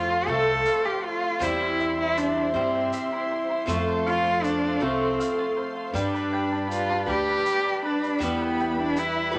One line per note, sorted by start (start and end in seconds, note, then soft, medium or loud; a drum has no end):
0.00 0.24 F2 medium
0.00 0.27 F3 medium
0.00 0.27 A3 medium
0.00 0.28 C4 medium
0.00 0.27 F4 medium
0.00 0.29 F4 medium
0.00 0.26 A4 medium
0.00 1.39 A4 medium
0.00 0.47 C5 medium
0.00 5.91 C5 medium
0.00 0.65 F5 medium
0.00 1.39 F5 medium
0.00 5.91 C6 medium
0.10 0.83 F4 medium
0.27 0.63 C2 medium
0.27 1.39 F3 medium
0.27 1.40 A3 medium
0.27 1.42 A3 medium
0.27 1.40 C4 medium
0.27 1.40 F4 medium
0.27 1.41 A4 medium
0.27 0.86 A4 loud
0.47 1.03 C5 medium
0.66 1.49 F5 medium
0.66 shaker medium
0.84 1.22 F4 medium
0.84 1.05 G4 medium
1.03 1.44 F4 medium
1.03 1.60 C5 medium
1.23 1.49 F4 medium
1.39 2.50 E2 medium
1.39 2.54 E3 medium
1.39 2.54 G3 medium
1.39 2.54 C4 medium
1.39 2.53 E4 medium
1.39 1.99 E4 medium
1.39 3.66 G4 medium
1.39 2.53 C5 medium
1.39 3.66 E5 medium
1.39 shaker medium
1.61 2.17 C5 soft
1.80 2.92 E5 medium
1.80 shaker soft
1.99 2.35 E4 medium
1.99 2.19 E4 medium
2.17 2.55 D4 medium
2.17 2.73 C5 medium
2.17 shaker medium
2.36 3.11 E4 medium
2.54 2.90 G2 medium
2.54 3.65 E3 medium
2.54 3.68 G3 medium
2.54 3.66 G3 medium
2.54 3.66 C4 medium
2.54 3.36 C4 medium
2.54 3.67 E4 medium
2.54 3.67 C5 medium
2.75 3.30 C5 medium
2.93 3.76 E5 medium
2.93 shaker loud
3.13 3.49 E4 medium
3.31 3.76 C5 medium
3.50 3.76 E4 medium
3.66 4.77 F2 medium
3.66 4.80 F3 medium
3.66 4.81 A3 medium
3.66 4.80 A3 medium
3.66 4.80 C4 medium
3.66 4.80 F4 medium
3.66 5.92 A4 medium
3.66 4.79 A4 medium
3.66 5.92 F5 medium
3.66 shaker medium
3.88 4.43 C5 medium
4.07 4.46 F4 loud
4.07 5.18 F5 medium
4.07 shaker soft
4.25 4.62 F4 medium
4.44 4.84 D4 medium
4.44 4.99 C5 medium
4.44 shaker medium
4.63 5.37 F4 medium
4.80 5.17 C2 medium
4.80 5.95 F3 medium
4.80 5.94 A3 medium
4.80 5.93 A3 medium
4.80 5.93 C4 medium
4.80 5.58 C4 medium
4.80 5.94 F4 medium
4.80 5.94 A4 medium
5.00 5.56 C5 medium
5.20 6.03 F5 medium
5.20 shaker medium
5.39 5.75 F4 medium
5.57 6.02 C5 medium
5.76 6.02 F4 medium
5.93 7.04 G2 medium
5.93 7.07 G3 medium
5.93 7.09 G3 medium
5.93 7.07 D4 medium
5.93 6.67 D4 medium
5.93 7.07 G4 medium
5.93 9.39 G4 medium
5.93 7.06 B4 medium
5.93 9.39 B4 medium
5.93 8.19 D5 medium
5.93 9.39 B5 medium
5.93 shaker medium
6.14 6.71 B4 medium
6.14 shaker soft
6.33 7.46 G5 medium
6.52 6.89 D4 medium
6.71 7.06 F4 medium
6.71 7.27 B4 medium
6.71 shaker medium
6.90 7.64 D4 medium
7.06 7.44 D2 medium
7.06 8.18 G3 medium
7.06 8.22 G3 medium
7.06 8.19 D4 medium
7.06 8.19 G4 medium
7.06 8.20 B4 medium
7.06 shaker soft
7.11 7.81 G4 loud
7.28 7.84 B4 medium
7.46 8.30 G5 medium
7.46 shaker medium
7.65 8.03 D4 medium
7.85 8.25 D4 medium
7.85 8.30 B4 medium
8.04 8.30 D4 medium
8.04 shaker soft
8.19 9.31 E2 medium
8.19 9.33 E3 medium
8.19 9.32 G3 medium
8.19 9.32 E4 medium
8.19 9.31 G4 medium
8.19 9.30 B4 medium
8.19 shaker medium
8.23 9.34 G3 medium
8.23 8.79 B3 medium
8.23 9.39 E5 medium
8.41 8.97 B4 medium
8.60 9.39 G5 medium
8.60 shaker soft
8.79 9.01 D4 medium
8.79 9.16 E4 medium
8.97 9.36 E4 medium
8.97 9.39 B4 medium
8.97 shaker medium
9.17 9.39 E4 medium
9.31 9.39 B1 medium
9.31 9.39 E3 medium
9.31 9.39 G3 medium
9.31 9.39 E4 medium
9.31 9.39 G4 medium
9.31 9.39 B4 medium
9.36 9.39 G3 medium